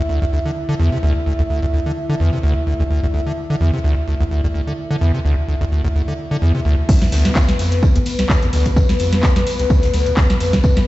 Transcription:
0.00 6.90 E5 medium
0.09 0.20 D2 medium
0.22 0.25 D2 loud
0.33 0.40 D2 medium
0.45 0.51 D3 medium
0.69 0.75 D3 loud
0.79 0.90 E2 loud
0.92 0.98 C3 medium
1.03 1.13 D2 loud
1.26 1.33 D2 medium
1.39 1.43 D2 loud
1.50 1.60 D2 medium
1.62 1.66 D2 loud
1.73 1.80 D2 medium
1.86 1.92 D3 medium
2.09 2.15 D3 loud
2.20 2.31 E2 medium
2.33 2.39 C3 medium
2.43 2.54 D2 loud
2.67 2.74 D2 medium
2.80 2.83 D2 loud
2.90 3.01 D2 medium
3.03 3.07 D2 loud
3.14 3.21 D2 medium
3.27 3.32 D3 medium
3.50 3.56 D3 loud
3.61 3.71 E2 loud
3.74 3.79 C3 medium
3.84 3.95 D2 loud
4.08 4.15 D2 medium
4.20 4.24 D2 loud
4.31 4.42 D2 medium
4.44 4.47 D2 loud
4.54 4.61 D2 medium
4.67 4.73 D3 medium
4.91 4.96 D3 loud
5.01 5.12 E2 loud
5.14 5.20 C3 medium
5.25 5.35 D2 loud
5.48 5.55 D2 medium
5.61 5.65 D2 loud
5.72 5.82 D2 medium
5.84 5.88 D2 loud
5.95 6.02 D2 medium
6.08 6.14 D3 medium
6.31 6.37 D3 loud
6.42 6.52 E2 loud
6.55 6.61 C3 medium
6.65 6.76 D2 loud
6.89 7.03 D2 medium
6.89 10.87 B4 medium
6.89 kick loud
6.89 crash loud
6.89 tambourine medium
7.02 7.07 G2 medium
7.02 snare medium
7.02 closed hi-hat soft
7.12 7.27 D2 loud
7.12 snare medium
7.12 open hi-hat loud
7.12 ride medium
7.12 tambourine medium
7.25 7.31 C3 medium
7.25 snare medium
7.25 closed hi-hat medium
7.35 7.40 D2 loud
7.35 kick loud
7.35 snare loud
7.35 clap loud
7.35 tambourine medium
7.49 snare medium
7.49 closed hi-hat medium
7.59 7.84 F2 medium
7.59 open hi-hat medium
7.59 ride medium
7.59 tambourine medium
7.72 closed hi-hat medium
7.83 7.90 A2 loud
7.83 kick loud
7.83 tambourine medium
7.96 7.99 E2 loud
7.96 closed hi-hat medium
8.06 open hi-hat loud
8.06 ride medium
8.06 tambourine medium
8.19 8.25 C2 medium
8.19 snare medium
8.19 closed hi-hat medium
8.29 8.44 D2 medium
8.29 kick loud
8.29 snare loud
8.29 clap loud
8.29 tambourine medium
8.42 8.48 G2 medium
8.42 closed hi-hat soft
8.53 8.68 D2 loud
8.53 open hi-hat medium
8.53 ride medium
8.53 tambourine medium
8.65 8.72 C3 medium
8.65 kick medium
8.65 closed hi-hat soft
8.65 closed hi-hat medium
8.76 8.81 D2 loud
8.76 kick loud
8.76 tambourine loud
8.89 snare medium
8.89 closed hi-hat soft
8.99 9.25 F2 medium
8.99 open hi-hat loud
8.99 ride medium
8.99 tambourine medium
9.13 snare medium
9.13 closed hi-hat medium
9.23 9.30 A2 loud
9.23 kick loud
9.23 snare loud
9.23 clap loud
9.23 tambourine medium
9.36 9.40 E2 loud
9.36 snare medium
9.36 closed hi-hat medium
9.47 open hi-hat loud
9.47 ride medium
9.47 tambourine medium
9.59 9.65 C2 medium
9.59 snare soft
9.59 closed hi-hat medium
9.70 9.85 D2 medium
9.70 kick loud
9.70 tambourine medium
9.83 9.89 G2 medium
9.83 snare medium
9.83 closed hi-hat medium
9.93 10.08 D2 loud
9.93 snare soft
9.93 open hi-hat loud
9.93 ride medium
9.93 tambourine medium
10.06 10.12 C3 medium
10.06 closed hi-hat medium
10.17 10.21 D2 loud
10.17 kick loud
10.17 snare loud
10.17 clap loud
10.17 tambourine medium
10.30 snare medium
10.30 closed hi-hat soft
10.40 10.65 F2 medium
10.40 open hi-hat loud
10.40 ride medium
10.40 tambourine medium
10.53 kick medium
10.53 snare medium
10.53 closed hi-hat medium
10.64 10.71 A2 loud
10.64 kick loud
10.64 tambourine medium
10.77 10.80 E2 loud
10.77 snare medium
10.77 closed hi-hat soft

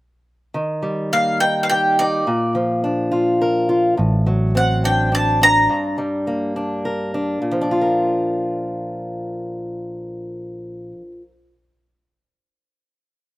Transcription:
0.54 2.23 D#3 soft
0.82 2.23 G3 soft
1.13 2.83 A#3 soft
1.13 1.40 F5 medium
1.40 1.99 D#4 soft
1.40 1.63 G5 medium
1.63 1.69 F5 soft
1.70 2.27 G4 soft
1.70 1.99 G5 medium
1.99 2.24 D#4 soft
1.99 2.52 D5 medium
2.27 3.95 A#2 medium
2.55 3.98 F3 soft
2.84 4.55 D4 soft
3.12 3.68 F4 soft
3.42 3.95 A#4 medium
3.69 3.95 F4 soft
3.97 5.67 A1 medium
3.97 5.66 A2 medium
4.26 5.66 F#3 soft
4.55 5.66 C4 soft
4.55 4.85 F#5 medium
4.84 5.11 D4 medium
4.84 5.14 G5 medium
5.12 5.41 D4 soft
5.12 5.43 A5 medium
5.42 6.55 D4 soft
5.42 5.96 A#5 medium
5.69 7.41 G2 medium
5.98 7.38 G3 soft
6.27 7.61 A#3 soft
6.56 7.13 D4 soft
6.85 7.39 A#4 soft
7.14 7.60 D4 soft
7.42 10.92 A#2 soft
7.51 11.01 F3 soft
7.61 11.11 D4 soft
7.71 11.21 F4 soft
7.81 11.31 A#4 soft

